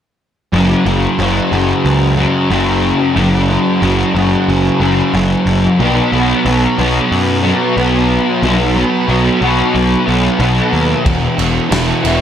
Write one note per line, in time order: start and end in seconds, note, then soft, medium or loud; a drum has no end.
0.53 0.73 F#1 loud
0.53 1.19 F#2 loud
0.53 0.87 C#3 loud
0.53 0.85 F#3 loud
0.85 1.06 F#1 medium
0.85 1.19 C#3 medium
0.85 1.21 F#3 medium
1.19 1.39 F#1 medium
1.19 2.49 F#2 medium
1.19 1.54 C#3 medium
1.19 1.52 F#3 medium
1.52 1.72 F#1 medium
1.52 2.18 C#3 medium
1.52 2.16 F#3 medium
1.85 2.25 C#2 medium
2.17 2.50 C#3 medium
2.17 2.52 F#3 medium
2.49 2.91 F#1 medium
2.49 3.13 F#2 medium
2.49 3.15 C#3 medium
2.49 3.17 F#3 medium
3.15 3.57 F#1 loud
3.15 3.80 F#2 loud
3.15 3.51 C#3 loud
3.15 3.48 F#3 loud
3.49 3.81 C#3 medium
3.49 3.83 F#3 medium
3.81 4.02 F#1 loud
3.81 4.48 F#2 medium
3.81 4.15 C#3 medium
3.81 4.13 F#3 medium
4.14 4.35 F#1 medium
4.14 4.81 C#3 medium
4.14 4.80 F#3 medium
4.48 4.68 F#1 medium
4.80 5.01 F#1 medium
4.80 5.13 C#3 medium
4.80 5.15 F#3 medium
5.13 5.34 F#1 loud
5.13 5.78 F#2 medium
5.13 5.78 C#3 medium
5.13 5.80 F#3 medium
5.46 5.66 F#1 medium
5.79 6.00 B1 loud
5.79 6.45 B2 medium
5.79 6.14 F#3 loud
5.79 6.12 B3 loud
6.12 6.33 B1 medium
6.12 6.46 F#3 medium
6.12 6.48 B3 medium
6.45 6.65 B1 medium
6.45 7.76 B2 medium
6.45 6.80 F#3 medium
6.45 6.78 B3 medium
6.78 6.99 B1 medium
6.78 7.44 F#3 medium
6.78 7.43 B3 medium
7.12 7.52 F#2 medium
7.43 7.76 F#3 medium
7.43 7.78 B3 medium
7.76 8.17 B1 medium
7.76 8.41 B2 medium
7.76 8.43 F#3 medium
7.76 8.44 B3 medium
8.43 8.83 B1 medium
8.43 9.06 B2 medium
8.43 8.77 F#3 loud
8.43 8.75 B3 loud
8.76 9.08 F#3 medium
8.76 9.10 B3 medium
9.08 9.29 B1 medium
9.08 9.74 B2 medium
9.08 9.43 F#3 medium
9.08 9.41 B3 medium
9.41 9.61 B1 medium
9.41 10.08 F#3 medium
9.41 10.06 B3 medium
9.75 9.95 B1 medium
10.06 10.28 B1 medium
10.06 10.39 F#3 medium
10.06 10.41 B3 medium
10.39 10.60 B1 medium
10.39 11.03 B2 medium
10.39 11.04 F#3 medium
10.39 12.21 B3 medium
10.73 10.93 D#2 medium
11.04 11.26 E1 medium
11.04 11.69 E2 medium
11.04 11.38 B2 loud
11.04 11.36 E3 loud
11.04 kick loud
11.04 crash medium
11.37 11.58 E1 medium
11.37 11.69 B2 medium
11.37 11.71 E3 medium
11.37 crash medium
11.69 11.91 E1 loud
11.69 12.21 E2 medium
11.69 12.04 B2 medium
11.69 12.02 E3 medium
11.69 snare loud
11.69 crash medium
12.02 12.21 E1 medium
12.02 12.21 B2 medium
12.02 12.21 E3 medium
12.02 crash medium